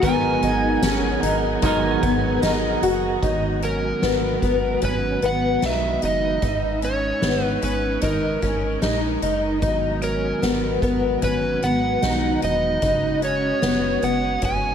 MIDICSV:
0, 0, Header, 1, 7, 480
1, 0, Start_track
1, 0, Key_signature, 5, "minor"
1, 0, Tempo, 800000
1, 14, Time_signature, 4, 2, 24, 8
1, 1934, Key_signature, 5, "minor"
1, 8848, End_track
2, 0, Start_track
2, 0, Title_t, "Electric slide guitar"
2, 0, Program_c, 0, 29
2, 21, Note_on_c, 0, 80, 102
2, 1434, Note_off_c, 0, 80, 0
2, 2188, Note_on_c, 0, 70, 77
2, 2907, Note_off_c, 0, 70, 0
2, 2909, Note_on_c, 0, 71, 85
2, 3149, Note_off_c, 0, 71, 0
2, 3153, Note_on_c, 0, 78, 85
2, 3390, Note_off_c, 0, 78, 0
2, 3392, Note_on_c, 0, 76, 73
2, 3628, Note_off_c, 0, 76, 0
2, 3630, Note_on_c, 0, 75, 83
2, 4078, Note_off_c, 0, 75, 0
2, 4107, Note_on_c, 0, 73, 83
2, 4461, Note_off_c, 0, 73, 0
2, 4461, Note_on_c, 0, 71, 83
2, 4585, Note_off_c, 0, 71, 0
2, 4585, Note_on_c, 0, 71, 71
2, 4823, Note_off_c, 0, 71, 0
2, 4825, Note_on_c, 0, 70, 66
2, 5276, Note_off_c, 0, 70, 0
2, 6023, Note_on_c, 0, 70, 70
2, 6715, Note_off_c, 0, 70, 0
2, 6746, Note_on_c, 0, 71, 81
2, 6982, Note_on_c, 0, 78, 85
2, 6987, Note_off_c, 0, 71, 0
2, 7464, Note_off_c, 0, 78, 0
2, 7466, Note_on_c, 0, 75, 80
2, 7946, Note_off_c, 0, 75, 0
2, 7948, Note_on_c, 0, 73, 85
2, 8424, Note_on_c, 0, 78, 88
2, 8435, Note_off_c, 0, 73, 0
2, 8666, Note_off_c, 0, 78, 0
2, 8671, Note_on_c, 0, 80, 88
2, 8848, Note_off_c, 0, 80, 0
2, 8848, End_track
3, 0, Start_track
3, 0, Title_t, "Twelve-string acoustic guitar"
3, 0, Program_c, 1, 25
3, 17, Note_on_c, 1, 59, 93
3, 256, Note_off_c, 1, 59, 0
3, 259, Note_on_c, 1, 63, 76
3, 494, Note_off_c, 1, 63, 0
3, 496, Note_on_c, 1, 61, 86
3, 733, Note_off_c, 1, 61, 0
3, 736, Note_on_c, 1, 63, 74
3, 968, Note_off_c, 1, 63, 0
3, 975, Note_on_c, 1, 63, 92
3, 1214, Note_off_c, 1, 63, 0
3, 1217, Note_on_c, 1, 59, 75
3, 1452, Note_off_c, 1, 59, 0
3, 1454, Note_on_c, 1, 63, 83
3, 1694, Note_off_c, 1, 63, 0
3, 1695, Note_on_c, 1, 66, 78
3, 1935, Note_off_c, 1, 66, 0
3, 1938, Note_on_c, 1, 63, 80
3, 2173, Note_off_c, 1, 63, 0
3, 2175, Note_on_c, 1, 61, 63
3, 2413, Note_off_c, 1, 61, 0
3, 2415, Note_on_c, 1, 59, 73
3, 2649, Note_off_c, 1, 59, 0
3, 2656, Note_on_c, 1, 59, 71
3, 2892, Note_off_c, 1, 59, 0
3, 2894, Note_on_c, 1, 61, 77
3, 3134, Note_off_c, 1, 61, 0
3, 3136, Note_on_c, 1, 59, 67
3, 3374, Note_on_c, 1, 51, 68
3, 3375, Note_off_c, 1, 59, 0
3, 3614, Note_off_c, 1, 51, 0
3, 3615, Note_on_c, 1, 63, 67
3, 3847, Note_off_c, 1, 63, 0
3, 3854, Note_on_c, 1, 63, 78
3, 4091, Note_off_c, 1, 63, 0
3, 4094, Note_on_c, 1, 61, 63
3, 4330, Note_off_c, 1, 61, 0
3, 4333, Note_on_c, 1, 59, 71
3, 4570, Note_off_c, 1, 59, 0
3, 4572, Note_on_c, 1, 61, 63
3, 4810, Note_off_c, 1, 61, 0
3, 4812, Note_on_c, 1, 63, 71
3, 5050, Note_off_c, 1, 63, 0
3, 5053, Note_on_c, 1, 61, 68
3, 5288, Note_off_c, 1, 61, 0
3, 5290, Note_on_c, 1, 63, 73
3, 5526, Note_off_c, 1, 63, 0
3, 5533, Note_on_c, 1, 63, 69
3, 5764, Note_off_c, 1, 63, 0
3, 5772, Note_on_c, 1, 63, 80
3, 6011, Note_off_c, 1, 63, 0
3, 6013, Note_on_c, 1, 61, 64
3, 6251, Note_off_c, 1, 61, 0
3, 6254, Note_on_c, 1, 59, 71
3, 6488, Note_off_c, 1, 59, 0
3, 6495, Note_on_c, 1, 59, 73
3, 6733, Note_off_c, 1, 59, 0
3, 6735, Note_on_c, 1, 61, 77
3, 6973, Note_off_c, 1, 61, 0
3, 6976, Note_on_c, 1, 59, 65
3, 7212, Note_off_c, 1, 59, 0
3, 7214, Note_on_c, 1, 63, 70
3, 7447, Note_off_c, 1, 63, 0
3, 7454, Note_on_c, 1, 63, 66
3, 7687, Note_off_c, 1, 63, 0
3, 7694, Note_on_c, 1, 63, 81
3, 7932, Note_off_c, 1, 63, 0
3, 7934, Note_on_c, 1, 61, 61
3, 8170, Note_off_c, 1, 61, 0
3, 8173, Note_on_c, 1, 59, 76
3, 8405, Note_off_c, 1, 59, 0
3, 8412, Note_on_c, 1, 59, 66
3, 8650, Note_off_c, 1, 59, 0
3, 8652, Note_on_c, 1, 61, 74
3, 8848, Note_off_c, 1, 61, 0
3, 8848, End_track
4, 0, Start_track
4, 0, Title_t, "Clean electric guitar"
4, 0, Program_c, 2, 27
4, 8, Note_on_c, 2, 44, 82
4, 12, Note_on_c, 2, 51, 75
4, 16, Note_on_c, 2, 54, 83
4, 20, Note_on_c, 2, 59, 80
4, 25, Note_on_c, 2, 63, 84
4, 28, Note_on_c, 2, 70, 88
4, 718, Note_off_c, 2, 70, 0
4, 725, Note_on_c, 2, 70, 52
4, 731, Note_off_c, 2, 44, 0
4, 736, Note_off_c, 2, 63, 0
4, 738, Note_on_c, 2, 63, 51
4, 743, Note_off_c, 2, 59, 0
4, 747, Note_on_c, 2, 59, 46
4, 754, Note_off_c, 2, 54, 0
4, 756, Note_on_c, 2, 54, 43
4, 970, Note_off_c, 2, 70, 0
4, 970, Note_on_c, 2, 44, 88
4, 972, Note_off_c, 2, 54, 0
4, 973, Note_off_c, 2, 51, 0
4, 976, Note_off_c, 2, 63, 0
4, 976, Note_on_c, 2, 51, 91
4, 978, Note_off_c, 2, 59, 0
4, 979, Note_on_c, 2, 54, 95
4, 985, Note_on_c, 2, 59, 98
4, 988, Note_on_c, 2, 63, 92
4, 991, Note_on_c, 2, 70, 95
4, 1446, Note_off_c, 2, 54, 0
4, 1448, Note_on_c, 2, 54, 64
4, 1452, Note_off_c, 2, 44, 0
4, 1459, Note_off_c, 2, 59, 0
4, 1461, Note_on_c, 2, 59, 71
4, 1462, Note_off_c, 2, 70, 0
4, 1467, Note_off_c, 2, 63, 0
4, 1470, Note_on_c, 2, 63, 75
4, 1479, Note_on_c, 2, 70, 72
4, 1946, Note_off_c, 2, 70, 0
4, 2246, Note_off_c, 2, 51, 0
4, 2246, Note_off_c, 2, 54, 0
4, 2246, Note_off_c, 2, 59, 0
4, 2246, Note_off_c, 2, 63, 0
4, 8848, End_track
5, 0, Start_track
5, 0, Title_t, "Tonewheel organ"
5, 0, Program_c, 3, 16
5, 0, Note_on_c, 3, 59, 68
5, 0, Note_on_c, 3, 68, 64
5, 19, Note_on_c, 3, 70, 56
5, 20, Note_on_c, 3, 78, 71
5, 1911, Note_off_c, 3, 59, 0
5, 1911, Note_off_c, 3, 68, 0
5, 1917, Note_off_c, 3, 70, 0
5, 1918, Note_off_c, 3, 78, 0
5, 1934, Note_on_c, 3, 51, 56
5, 1934, Note_on_c, 3, 54, 48
5, 1934, Note_on_c, 3, 56, 48
5, 1934, Note_on_c, 3, 59, 50
5, 1935, Note_on_c, 3, 66, 59
5, 3835, Note_off_c, 3, 51, 0
5, 3835, Note_off_c, 3, 54, 0
5, 3835, Note_off_c, 3, 59, 0
5, 3835, Note_off_c, 3, 66, 0
5, 3852, Note_on_c, 3, 63, 61
5, 5754, Note_off_c, 3, 63, 0
5, 5775, Note_on_c, 3, 51, 55
5, 5777, Note_on_c, 3, 54, 54
5, 5777, Note_on_c, 3, 66, 58
5, 5778, Note_on_c, 3, 59, 52
5, 7676, Note_off_c, 3, 51, 0
5, 7676, Note_off_c, 3, 54, 0
5, 7677, Note_off_c, 3, 59, 0
5, 7696, Note_on_c, 3, 61, 49
5, 8848, Note_off_c, 3, 56, 0
5, 8848, Note_off_c, 3, 61, 0
5, 8848, Note_off_c, 3, 66, 0
5, 8848, End_track
6, 0, Start_track
6, 0, Title_t, "Analog synth bass"
6, 0, Program_c, 4, 38
6, 16, Note_on_c, 4, 32, 115
6, 227, Note_off_c, 4, 32, 0
6, 255, Note_on_c, 4, 32, 110
6, 466, Note_off_c, 4, 32, 0
6, 494, Note_on_c, 4, 32, 107
6, 705, Note_off_c, 4, 32, 0
6, 734, Note_on_c, 4, 32, 90
6, 945, Note_off_c, 4, 32, 0
6, 977, Note_on_c, 4, 32, 116
6, 1187, Note_off_c, 4, 32, 0
6, 1218, Note_on_c, 4, 32, 99
6, 1427, Note_off_c, 4, 32, 0
6, 1453, Note_on_c, 4, 32, 93
6, 1665, Note_off_c, 4, 32, 0
6, 1695, Note_on_c, 4, 30, 99
6, 1906, Note_off_c, 4, 30, 0
6, 1937, Note_on_c, 4, 32, 103
6, 2358, Note_off_c, 4, 32, 0
6, 2415, Note_on_c, 4, 32, 101
6, 2626, Note_off_c, 4, 32, 0
6, 2654, Note_on_c, 4, 32, 88
6, 2865, Note_off_c, 4, 32, 0
6, 2895, Note_on_c, 4, 32, 107
6, 3106, Note_off_c, 4, 32, 0
6, 3137, Note_on_c, 4, 32, 83
6, 3347, Note_off_c, 4, 32, 0
6, 3378, Note_on_c, 4, 35, 76
6, 3587, Note_off_c, 4, 35, 0
6, 3617, Note_on_c, 4, 30, 77
6, 3827, Note_off_c, 4, 30, 0
6, 3854, Note_on_c, 4, 32, 103
6, 4276, Note_off_c, 4, 32, 0
6, 4334, Note_on_c, 4, 32, 101
6, 4545, Note_off_c, 4, 32, 0
6, 4575, Note_on_c, 4, 32, 84
6, 4786, Note_off_c, 4, 32, 0
6, 4814, Note_on_c, 4, 32, 100
6, 5025, Note_off_c, 4, 32, 0
6, 5056, Note_on_c, 4, 32, 89
6, 5266, Note_off_c, 4, 32, 0
6, 5293, Note_on_c, 4, 34, 79
6, 5505, Note_off_c, 4, 34, 0
6, 5534, Note_on_c, 4, 30, 88
6, 5773, Note_on_c, 4, 32, 110
6, 5782, Note_off_c, 4, 30, 0
6, 6196, Note_off_c, 4, 32, 0
6, 6255, Note_on_c, 4, 32, 97
6, 6466, Note_off_c, 4, 32, 0
6, 6493, Note_on_c, 4, 32, 87
6, 6705, Note_off_c, 4, 32, 0
6, 6735, Note_on_c, 4, 32, 101
6, 6946, Note_off_c, 4, 32, 0
6, 6976, Note_on_c, 4, 32, 89
6, 7187, Note_off_c, 4, 32, 0
6, 7217, Note_on_c, 4, 35, 70
6, 7427, Note_off_c, 4, 35, 0
6, 7456, Note_on_c, 4, 28, 94
6, 7667, Note_off_c, 4, 28, 0
6, 7694, Note_on_c, 4, 30, 110
6, 8116, Note_off_c, 4, 30, 0
6, 8177, Note_on_c, 4, 30, 92
6, 8387, Note_off_c, 4, 30, 0
6, 8414, Note_on_c, 4, 30, 89
6, 8625, Note_off_c, 4, 30, 0
6, 8656, Note_on_c, 4, 30, 102
6, 8848, Note_off_c, 4, 30, 0
6, 8848, End_track
7, 0, Start_track
7, 0, Title_t, "Drums"
7, 15, Note_on_c, 9, 36, 111
7, 16, Note_on_c, 9, 42, 77
7, 75, Note_off_c, 9, 36, 0
7, 76, Note_off_c, 9, 42, 0
7, 255, Note_on_c, 9, 42, 46
7, 315, Note_off_c, 9, 42, 0
7, 495, Note_on_c, 9, 38, 119
7, 496, Note_on_c, 9, 54, 77
7, 499, Note_on_c, 9, 42, 80
7, 555, Note_off_c, 9, 38, 0
7, 556, Note_off_c, 9, 54, 0
7, 559, Note_off_c, 9, 42, 0
7, 738, Note_on_c, 9, 42, 66
7, 798, Note_off_c, 9, 42, 0
7, 973, Note_on_c, 9, 42, 83
7, 976, Note_on_c, 9, 36, 106
7, 1033, Note_off_c, 9, 42, 0
7, 1036, Note_off_c, 9, 36, 0
7, 1217, Note_on_c, 9, 36, 100
7, 1217, Note_on_c, 9, 42, 56
7, 1277, Note_off_c, 9, 36, 0
7, 1277, Note_off_c, 9, 42, 0
7, 1457, Note_on_c, 9, 38, 108
7, 1457, Note_on_c, 9, 54, 64
7, 1458, Note_on_c, 9, 42, 66
7, 1517, Note_off_c, 9, 38, 0
7, 1517, Note_off_c, 9, 54, 0
7, 1518, Note_off_c, 9, 42, 0
7, 1697, Note_on_c, 9, 42, 58
7, 1757, Note_off_c, 9, 42, 0
7, 1935, Note_on_c, 9, 36, 98
7, 1936, Note_on_c, 9, 42, 57
7, 1995, Note_off_c, 9, 36, 0
7, 1996, Note_off_c, 9, 42, 0
7, 2174, Note_on_c, 9, 42, 39
7, 2234, Note_off_c, 9, 42, 0
7, 2412, Note_on_c, 9, 38, 98
7, 2416, Note_on_c, 9, 42, 71
7, 2472, Note_off_c, 9, 38, 0
7, 2476, Note_off_c, 9, 42, 0
7, 2654, Note_on_c, 9, 36, 79
7, 2654, Note_on_c, 9, 42, 50
7, 2714, Note_off_c, 9, 36, 0
7, 2714, Note_off_c, 9, 42, 0
7, 2890, Note_on_c, 9, 42, 61
7, 2894, Note_on_c, 9, 36, 77
7, 2950, Note_off_c, 9, 42, 0
7, 2954, Note_off_c, 9, 36, 0
7, 3134, Note_on_c, 9, 42, 43
7, 3194, Note_off_c, 9, 42, 0
7, 3372, Note_on_c, 9, 38, 92
7, 3373, Note_on_c, 9, 42, 53
7, 3432, Note_off_c, 9, 38, 0
7, 3433, Note_off_c, 9, 42, 0
7, 3612, Note_on_c, 9, 42, 50
7, 3672, Note_off_c, 9, 42, 0
7, 3853, Note_on_c, 9, 42, 59
7, 3854, Note_on_c, 9, 36, 94
7, 3913, Note_off_c, 9, 42, 0
7, 3914, Note_off_c, 9, 36, 0
7, 4093, Note_on_c, 9, 42, 36
7, 4153, Note_off_c, 9, 42, 0
7, 4332, Note_on_c, 9, 38, 97
7, 4336, Note_on_c, 9, 42, 69
7, 4392, Note_off_c, 9, 38, 0
7, 4396, Note_off_c, 9, 42, 0
7, 4574, Note_on_c, 9, 42, 50
7, 4634, Note_off_c, 9, 42, 0
7, 4809, Note_on_c, 9, 42, 65
7, 4814, Note_on_c, 9, 36, 83
7, 4869, Note_off_c, 9, 42, 0
7, 4874, Note_off_c, 9, 36, 0
7, 5054, Note_on_c, 9, 42, 45
7, 5055, Note_on_c, 9, 36, 80
7, 5114, Note_off_c, 9, 42, 0
7, 5115, Note_off_c, 9, 36, 0
7, 5291, Note_on_c, 9, 38, 101
7, 5292, Note_on_c, 9, 42, 54
7, 5351, Note_off_c, 9, 38, 0
7, 5352, Note_off_c, 9, 42, 0
7, 5534, Note_on_c, 9, 42, 48
7, 5594, Note_off_c, 9, 42, 0
7, 5773, Note_on_c, 9, 36, 108
7, 5773, Note_on_c, 9, 42, 59
7, 5833, Note_off_c, 9, 36, 0
7, 5833, Note_off_c, 9, 42, 0
7, 6012, Note_on_c, 9, 42, 38
7, 6072, Note_off_c, 9, 42, 0
7, 6253, Note_on_c, 9, 38, 96
7, 6258, Note_on_c, 9, 42, 66
7, 6313, Note_off_c, 9, 38, 0
7, 6318, Note_off_c, 9, 42, 0
7, 6494, Note_on_c, 9, 36, 87
7, 6496, Note_on_c, 9, 42, 51
7, 6554, Note_off_c, 9, 36, 0
7, 6556, Note_off_c, 9, 42, 0
7, 6732, Note_on_c, 9, 42, 64
7, 6735, Note_on_c, 9, 36, 81
7, 6792, Note_off_c, 9, 42, 0
7, 6795, Note_off_c, 9, 36, 0
7, 6975, Note_on_c, 9, 42, 42
7, 7035, Note_off_c, 9, 42, 0
7, 7214, Note_on_c, 9, 38, 95
7, 7214, Note_on_c, 9, 42, 52
7, 7274, Note_off_c, 9, 38, 0
7, 7274, Note_off_c, 9, 42, 0
7, 7453, Note_on_c, 9, 42, 47
7, 7513, Note_off_c, 9, 42, 0
7, 7692, Note_on_c, 9, 42, 64
7, 7694, Note_on_c, 9, 36, 96
7, 7752, Note_off_c, 9, 42, 0
7, 7754, Note_off_c, 9, 36, 0
7, 7933, Note_on_c, 9, 42, 38
7, 7993, Note_off_c, 9, 42, 0
7, 8173, Note_on_c, 9, 38, 96
7, 8177, Note_on_c, 9, 42, 70
7, 8233, Note_off_c, 9, 38, 0
7, 8237, Note_off_c, 9, 42, 0
7, 8415, Note_on_c, 9, 42, 47
7, 8475, Note_off_c, 9, 42, 0
7, 8650, Note_on_c, 9, 42, 68
7, 8655, Note_on_c, 9, 36, 83
7, 8710, Note_off_c, 9, 42, 0
7, 8715, Note_off_c, 9, 36, 0
7, 8848, End_track
0, 0, End_of_file